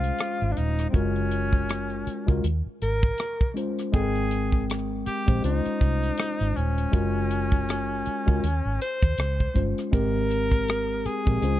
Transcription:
Already playing: C2 G#3 C#4 F4 C5
0.04 closed hi-hat
0.19 cross-stick, closed hi-hat
0.41 G#1, closed hi-hat
0.52 D4
0.57 D#1 D#4, closed hi-hat
0.79 cross-stick, closed hi-hat
0.90 G#3 C4 F4, closed hi-hat
0.94 F#1 C#4 F#4 A#4, kick
1.16 closed hi-hat
1.31 closed hi-hat
1.53 kick, closed hi-hat
1.69 cross-stick, closed hi-hat
1.90 closed hi-hat
2.07 muted fingered electric bass stroke, closed hi-hat
2.27 C#2 G#3 F4 F#4 A#4, kick, closed hi-hat
2.44 D#2, closed hi-hat
2.66 muted fingered electric bass stroke
2.82 G#1 A#4, closed hi-hat
3.03 kick, closed hi-hat
3.18 cross-stick, closed hi-hat
3.41 kick
3.54 G#3 C#4 F4 C5, closed hi-hat
3.79 cross-stick, closed hi-hat
3.92 G#1 G#3 C4 G#4 A4 G5, kick, closed hi-hat
4.02 A#4
4.16 closed hi-hat
4.31 closed hi-hat
4.52 kick, closed hi-hat
4.70 cross-stick, closed hi-hat
5.06 G4, muted fingered electric bass stroke, closed hi-hat
5.26 A#1 G#3 C4 G4 C5, kick, closed hi-hat
5.42 C#2 G#3 C#4 D#4 F4 C5, closed hi-hat
5.66 muted fingered electric bass stroke, closed hi-hat
5.81 C2, kick, closed hi-hat
6.03 closed hi-hat
6.18 cross-stick, closed hi-hat
6.40 G#1, closed hi-hat
6.56 D#1 C#4, closed hi-hat
6.78 closed hi-hat
6.92 F#1 G#3 F4 F#4 A#4, kick, closed hi-hat
7.31 closed hi-hat
7.52 kick, closed hi-hat
7.69 cross-stick, closed hi-hat
8.06 muted fingered electric bass stroke, closed hi-hat
8.26 C#2 G#3 F4 F#4 A#4, kick, closed hi-hat
8.44 D#2, closed hi-hat
8.65 G#1
8.81 C5, closed hi-hat
9.03 D#2, kick, closed hi-hat
9.18 C#2, cross-stick, closed hi-hat
9.40 kick
9.54 G1 G#3 C#4 F4 C5, kick, closed hi-hat
9.78 cross-stick, closed hi-hat
9.91 G#1 G#3 C4 G4 A#4, kick, closed hi-hat
10.30 closed hi-hat
10.52 kick, closed hi-hat
10.68 cross-stick, closed hi-hat
11.06 G#4, muted fingered electric bass stroke, closed hi-hat
11.26 A#1 G#3 C4 G4 A#4, kick, closed hi-hat
11.41 C#2 G#3 C#4 F4 C5, closed hi-hat

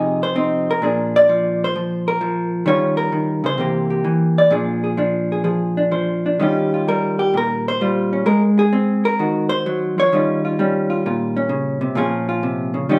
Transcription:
Already playing: C3 F3 C4 D#4 G#4
0.23 C5
0.36 C4 D#4
0.71 A#4
0.82 A#2 F3 D4 G#4
1.16 D5
1.29 F3
1.64 C5
1.76 F3
2.08 A#4
2.21 F3
2.66 D#3 G3 C#4 F4 C#5
2.97 A#4
3.12 D#3
3.44 C#3 C5
3.58 C3 E3 A#3 G4
3.90 G4
4.04 E3
4.38 D5
4.50 A#2 F3 D4 G#4
4.84 G#4
4.97 F3 D4
5.32 G#4
5.44 F3 G#4
5.77 D4
5.91 F3 C5
6.26 D4
6.40 D#3 G3 C#4 F4 G4
6.74 F4
6.88 G3 A#4
7.19 G4
7.34 A#2 A#4
7.68 C5
7.81 G3 F4
8.13 C#4
8.26 G#3 A#4
8.59 G#4
8.73 C4
9.05 A#4
9.19 D#3 F#4
9.49 C5
9.66 F#3
9.98 F3 C#5
10.13 D#3 G3 C#4 F4
10.45 F4
10.59 G3 C#4
10.90 F4
11.06 A#2 F4
11.37 C#4
11.49 C#3
11.81 C3
11.95 A#2 F3 C#4 F4 G#4
12.29 F4
12.43 C3
12.74 C#3
12.89 D#3 G3 C#4 F4 G4

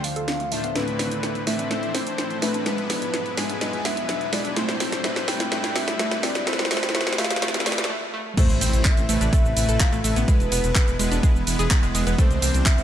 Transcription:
Already playing: D2 D3 F3 D4 C5, riser
0.04 F5, open hi-hat
0.16 A4, closed hi-hat
0.28 snare, closed hi-hat
0.40 A3, closed hi-hat
0.52 A2 A3 D4 F4 C5 E5, open hi-hat
0.64 B3, closed hi-hat
0.76 A2 A3 C4 E4 B4, snare, closed hi-hat
0.88 closed hi-hat
0.99 C4, snare, open hi-hat
1.11 closed hi-hat
1.23 snare, closed hi-hat
1.35 closed hi-hat
1.47 A2 A3 C4 E4 B4 E5, snare, open hi-hat
1.59 D4, closed hi-hat
1.71 A2 A3 C4 E4 C5, snare, closed hi-hat
1.83 closed hi-hat
1.95 C4 C5, snare, open hi-hat
2.07 closed hi-hat
2.18 snare, closed hi-hat
2.30 closed hi-hat
2.42 A2 A3 C4 E4 B4, snare, open hi-hat
2.54 D4, closed hi-hat
2.66 E2 G#2 B2 G#3 B3 E4 B4, snare, closed hi-hat
2.78 closed hi-hat
2.90 B3, snare, open hi-hat
3.02 closed hi-hat
3.14 snare, closed hi-hat
3.26 closed hi-hat
3.37 G#2 G#3 B3 E4 B4 G#5, snare, open hi-hat
3.50 D4, closed hi-hat
3.61 G#2 G#3 B3 E4 B4, snare, closed hi-hat
3.73 closed hi-hat
3.85 B3 E5, snare, open hi-hat
3.97 closed hi-hat
4.09 snare, closed hi-hat
4.21 closed hi-hat
4.33 G#2 G#3 B3 E4 B4 D5, snare, open hi-hat
4.45 D4, closed hi-hat
4.56 C2 A2 C3 G3 A3 C4 D4 E4 G4 C5, snare, closed hi-hat
4.69 snare, closed hi-hat
4.80 C4, snare, open hi-hat
4.92 snare, closed hi-hat
5.04 A2 A3 C4 E4 B4, snare, closed hi-hat
5.16 snare, closed hi-hat
5.28 C4 G5, snare, open hi-hat
5.40 snare, closed hi-hat
5.52 A2 A3 C4 E4 B4, snare, closed hi-hat
5.64 snare, closed hi-hat
5.75 C4 E5, snare, open hi-hat
5.88 snare, closed hi-hat
5.99 A2 A3 C4 E4 B4, snare, closed hi-hat
6.11 snare, closed hi-hat
6.23 C4 D5, snare, open hi-hat
6.35 snare, closed hi-hat
6.47 D2 A2 D3 F3 A3 C4 E4 F4 B4 C5, snare, closed hi-hat
6.53 snare
6.59 snare, closed hi-hat
6.65 snare
6.71 A2 A3 C4 E4 B4, snare, open hi-hat
6.77 snare
6.83 snare, closed hi-hat
6.89 snare
6.95 A2 A3 C4 E4 B4, snare, closed hi-hat
7.01 snare
7.07 snare, closed hi-hat
7.13 snare
7.18 A2 A3 C4 E4 B4 F5, snare, open hi-hat
7.24 snare
7.31 snare, closed hi-hat
7.36 snare
7.42 A2 A3 C4 E4 B4, snare, closed hi-hat
7.48 snare
7.54 snare, closed hi-hat
7.60 snare
7.66 A2 A3 C4 E4 B4 D5, snare, open hi-hat
7.72 snare
7.78 snare, closed hi-hat
7.84 snare
7.90 A3
8.14 A3
8.37 A2 C3 A3 C4 E4 A4 C5, kick, closed hi-hat, crash, ride, impact, cabasa
8.50 A1, closed hi-hat, cabasa
8.61 A1 C4 C5, open hi-hat, ride, cabasa
8.73 A1, closed hi-hat, cabasa
8.85 E5, kick, clap, closed hi-hat, ride, cabasa
8.97 A1, closed hi-hat, cabasa
9.09 A1 A2 A3 C4 E4 A4 B4, open hi-hat, ride, cabasa
9.21 A1 D4 D5, closed hi-hat, cabasa
9.33 A3 A4 E5, kick, closed hi-hat, ride, cabasa
9.45 A1, cabasa
9.56 A1 A2 A3 C4 E4 B4, open hi-hat, ride, cabasa
9.69 A1 A4 A5, closed hi-hat, cabasa
9.80 F5, kick, clap, closed hi-hat, ride, cabasa
9.92 A1 A3 A4, closed hi-hat, cabasa
10.04 A1 A3 A4 E5, open hi-hat, ride, cabasa
10.16 A1 B3 B4, closed hi-hat, cabasa
10.28 E3 G#3 B3 E4 G#4 B4, kick, closed hi-hat, ride, cabasa
10.40 E1, closed hi-hat, cabasa
10.52 E1 B3 B4, open hi-hat, ride, cabasa
10.64 E1, closed hi-hat, cabasa
10.75 kick, clap, closed hi-hat, ride, cabasa
10.88 E1, closed hi-hat, cabasa
10.99 E1 G#3 B3 E4 G#4 B4, open hi-hat, ride, cabasa
11.12 E1 D4 D5, closed hi-hat, cabasa
11.23 G#3 G#4, kick, closed hi-hat, ride, cabasa
11.35 E1, cabasa
11.47 E1 G#3 B3 E4 B4, open hi-hat, ride, cabasa
11.59 E1 G#4 G#5, closed hi-hat, cabasa
11.71 kick, clap, closed hi-hat, ride, cabasa
11.83 E1 G#3 G#4, closed hi-hat, cabasa
11.95 E1 G#3 G#4, open hi-hat, ride, cabasa
12.07 E1 B3 B4, closed hi-hat, cabasa
12.18 C3 D3 G3 A3 C4 D4 A4 C5, kick, closed hi-hat, ride, cabasa
12.31 C2, closed hi-hat, cabasa
12.42 C2 C4 C5, open hi-hat, ride, cabasa
12.54 C2, closed hi-hat, cabasa
12.66 E5, kick, clap, closed hi-hat, ride, cabasa
12.78 C2, closed hi-hat, cabasa

